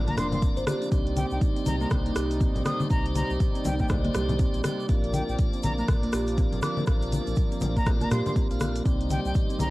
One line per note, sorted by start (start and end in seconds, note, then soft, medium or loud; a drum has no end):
0.00 0.12 A#1 medium
0.00 0.88 F3 medium
0.00 0.88 A#3 medium
0.00 0.65 D4 medium
0.00 0.65 F4 medium
0.00 0.65 A#4 medium
0.00 0.65 D5 loud
0.00 0.89 D5 medium
0.08 0.17 A#3 loud
0.08 0.16 A#5 medium
0.08 closed hi-hat soft
0.08 high conga medium
0.17 0.51 F1 medium
0.17 0.31 D4 medium
0.17 0.28 C6 medium
0.17 cross-stick medium
0.17 open hi-hat medium
0.17 low conga medium
0.17 shaker medium
0.32 0.39 C6 medium
0.32 closed hi-hat soft
0.32 high conga medium
0.32 low conga loud
0.32 shaker soft
0.42 0.56 C4 medium
0.42 kick loud
0.42 closed hi-hat medium
0.42 shaker medium
0.57 0.65 G#1 medium
0.57 0.66 C5 medium
0.57 closed hi-hat soft
0.57 shaker soft
0.67 0.90 D4 loud
0.67 0.90 F4 medium
0.67 0.75 G4 medium
0.67 0.90 A#4 medium
0.67 0.90 D5 loud
0.67 cross-stick loud
0.67 open hi-hat medium
0.67 high conga loud
0.67 shaker loud
0.82 0.91 D4 medium
0.82 closed hi-hat soft
0.82 shaker soft
0.92 1.25 C2 loud
0.92 4.85 C3 medium
0.92 4.85 G3 medium
0.92 1.05 C4 medium
0.92 2.63 D#4 medium
0.92 4.85 D#4 medium
0.92 2.63 G4 medium
0.92 2.63 C5 medium
0.92 2.63 D5 loud
0.92 9.70 D5 medium
0.92 kick loud
0.92 closed hi-hat medium
0.92 shaker soft
1.07 closed hi-hat soft
1.17 1.27 G5 medium
1.17 open hi-hat medium
1.17 high conga loud
1.17 shaker loud
1.31 1.39 C2 medium
1.31 1.38 G5 medium
1.31 shaker soft
1.42 kick loud
1.42 closed hi-hat medium
1.42 shaker medium
1.56 1.62 C4 medium
1.56 closed hi-hat soft
1.56 shaker soft
1.66 1.86 C2 medium
1.66 1.76 A#5 medium
1.66 open hi-hat medium
1.66 high conga medium
1.66 low conga medium
1.66 shaker loud
1.81 1.87 A#3 loud
1.81 1.88 A#5 medium
1.81 shaker soft
1.91 2.11 C2 medium
1.91 kick loud
1.91 cross-stick medium
1.91 closed hi-hat medium
1.91 high conga medium
1.91 shaker medium
2.06 2.15 A#3 loud
2.06 closed hi-hat soft
2.16 2.49 C2 medium
2.16 2.24 G4 medium
2.16 cross-stick medium
2.16 open hi-hat medium
2.16 shaker medium
2.31 open hi-hat soft
2.31 shaker soft
2.41 2.49 C4 loud
2.41 kick loud
2.41 closed hi-hat medium
2.41 shaker medium
2.56 2.63 A#1 medium
2.56 2.61 C4 medium
2.56 closed hi-hat soft
2.56 low conga medium
2.56 shaker soft
2.65 2.88 D#4 loud
2.65 2.88 G4 medium
2.65 2.88 C5 medium
2.65 2.88 D5 loud
2.65 2.81 D#6 loud
2.65 cross-stick medium
2.65 open hi-hat medium
2.65 high conga medium
2.65 shaker medium
2.80 high conga medium
2.80 shaker soft
2.90 3.24 C2 loud
2.90 3.04 C4 medium
2.90 4.62 D#4 medium
2.90 4.62 G4 medium
2.90 4.62 C5 medium
2.90 4.62 D5 loud
2.90 3.06 A#5 medium
2.90 kick loud
2.90 closed hi-hat medium
2.90 shaker soft
3.06 closed hi-hat soft
3.15 3.31 A#5 loud
3.15 open hi-hat medium
3.15 high conga loud
3.15 shaker medium
3.30 3.38 C2 medium
3.30 shaker soft
3.40 kick loud
3.40 closed hi-hat medium
3.40 shaker medium
3.55 3.60 C4 medium
3.55 closed hi-hat soft
3.55 shaker soft
3.65 3.84 C2 medium
3.65 3.75 G5 medium
3.65 open hi-hat medium
3.65 high conga medium
3.65 low conga loud
3.65 shaker loud
3.79 3.85 A#3 loud
3.79 3.86 G5 medium
3.79 kick medium
3.79 shaker soft
3.88 4.09 C2 medium
3.88 kick loud
3.88 cross-stick medium
3.88 closed hi-hat medium
3.88 low conga loud
3.88 shaker medium
4.04 4.14 A#3 loud
4.04 closed hi-hat soft
4.04 high conga medium
4.15 4.48 C2 medium
4.15 4.23 G4 medium
4.15 cross-stick medium
4.15 open hi-hat medium
4.15 low conga medium
4.15 shaker medium
4.29 closed hi-hat soft
4.29 high conga medium
4.29 low conga loud
4.29 shaker soft
4.39 4.47 C4 loud
4.39 kick loud
4.39 closed hi-hat medium
4.39 shaker medium
4.54 4.61 A#1 medium
4.54 4.60 C4 medium
4.54 closed hi-hat soft
4.54 shaker soft
4.64 4.87 D#4 loud
4.64 4.87 G4 medium
4.64 4.87 C5 medium
4.64 4.87 D5 loud
4.64 cross-stick medium
4.64 open hi-hat medium
4.64 high conga medium
4.64 shaker medium
4.80 shaker soft
4.89 5.22 A#1 loud
4.89 8.82 F3 medium
4.89 8.82 A#3 medium
4.89 5.03 C4 medium
4.89 6.60 D4 medium
4.89 6.60 F4 medium
4.89 6.60 A#4 medium
4.89 6.60 D5 medium
4.89 kick loud
4.89 closed hi-hat medium
4.89 shaker soft
5.04 closed hi-hat soft
5.13 5.23 G5 medium
5.13 open hi-hat medium
5.13 high conga loud
5.13 shaker medium
5.29 5.36 A#1 medium
5.29 5.35 G5 medium
5.29 shaker soft
5.38 kick loud
5.38 closed hi-hat medium
5.38 shaker soft
5.53 5.59 C4 medium
5.53 closed hi-hat soft
5.53 shaker soft
5.63 5.83 A#1 medium
5.63 5.73 A#5 medium
5.63 open hi-hat medium
5.63 high conga loud
5.63 low conga loud
5.63 shaker medium
5.78 5.84 A#3 loud
5.78 5.85 A#5 medium
5.78 shaker soft
5.88 6.08 A#1 medium
5.88 kick loud
5.88 cross-stick medium
5.88 closed hi-hat medium
5.88 high conga medium
5.88 shaker medium
6.03 6.12 A#3 loud
6.03 closed hi-hat soft
6.13 6.46 A#1 medium
6.13 6.21 G4 medium
6.13 cross-stick medium
6.13 open hi-hat medium
6.13 shaker medium
6.27 open hi-hat medium
6.27 shaker soft
6.38 6.46 C4 loud
6.38 kick loud
6.38 closed hi-hat medium
6.38 shaker medium
6.53 6.60 G#1 loud
6.53 6.58 C4 medium
6.53 closed hi-hat soft
6.53 low conga medium
6.53 shaker soft
6.62 6.85 D4 loud
6.62 6.85 F4 medium
6.62 6.85 A#4 medium
6.62 6.85 D5 loud
6.62 6.78 D6 medium
6.62 cross-stick medium
6.62 open hi-hat medium
6.62 high conga medium
6.62 shaker medium
6.77 high conga medium
6.77 shaker soft
6.87 7.20 A#1 loud
6.87 7.01 C4 medium
6.87 8.48 D4 medium
6.87 8.48 F4 medium
6.87 8.48 A#4 medium
6.87 8.48 D5 medium
6.87 kick loud
6.87 cross-stick medium
6.87 closed hi-hat medium
6.87 shaker medium
7.02 closed hi-hat soft
7.02 shaker soft
7.12 open hi-hat medium
7.12 high conga loud
7.12 shaker medium
7.27 7.34 A#1 medium
7.27 closed hi-hat soft
7.27 shaker soft
7.36 kick loud
7.36 closed hi-hat medium
7.36 shaker medium
7.52 7.57 C4 medium
7.52 closed hi-hat soft
7.52 shaker soft
7.61 7.81 A#1 medium
7.61 open hi-hat medium
7.61 high conga medium
7.61 low conga loud
7.61 shaker medium
7.76 7.82 A#3 loud
7.76 7.88 A#5 medium
7.76 kick medium
7.76 closed hi-hat soft
7.76 shaker soft
7.86 8.06 A#1 medium
7.86 kick loud
7.86 cross-stick medium
7.86 closed hi-hat medium
7.86 low conga loud
7.86 shaker medium
8.00 8.10 A#3 loud
8.00 8.09 A#5 medium
8.00 closed hi-hat soft
8.00 high conga medium
8.00 shaker soft
8.11 8.22 A#2 medium
8.11 8.19 G4 medium
8.11 8.21 C6 medium
8.11 cross-stick medium
8.11 open hi-hat medium
8.11 low conga medium
8.11 shaker medium
8.26 8.33 C6 medium
8.26 closed hi-hat soft
8.26 high conga medium
8.26 low conga medium
8.26 shaker soft
8.36 8.44 C4 loud
8.36 kick loud
8.36 closed hi-hat medium
8.36 shaker medium
8.51 8.81 A#1 loud
8.51 8.56 C4 medium
8.51 8.83 D4 medium
8.51 8.83 F4 medium
8.51 8.83 A#4 medium
8.51 8.83 F5 medium
8.51 closed hi-hat soft
8.51 shaker soft
8.60 cross-stick medium
8.60 open hi-hat loud
8.60 high conga medium
8.60 shaker loud
8.76 open hi-hat medium
8.76 shaker soft
8.85 9.19 C2 loud
8.85 9.70 C3 medium
8.85 9.70 G3 medium
8.85 8.99 C4 medium
8.85 9.70 D#4 medium
8.85 9.70 G4 medium
8.85 9.70 C5 medium
8.85 9.70 D5 loud
8.85 kick loud
8.85 closed hi-hat medium
8.85 shaker soft
9.01 closed hi-hat soft
9.10 9.20 G5 medium
9.10 open hi-hat loud
9.10 high conga loud
9.10 shaker medium
9.25 9.32 C2 medium
9.25 9.32 G5 medium
9.25 shaker soft
9.35 kick loud
9.35 closed hi-hat medium
9.35 shaker medium
9.50 9.55 C4 medium
9.50 closed hi-hat soft
9.50 shaker soft
9.59 9.70 C2 medium
9.59 9.70 A#5 medium
9.59 open hi-hat medium
9.59 high conga loud
9.59 low conga loud
9.59 shaker medium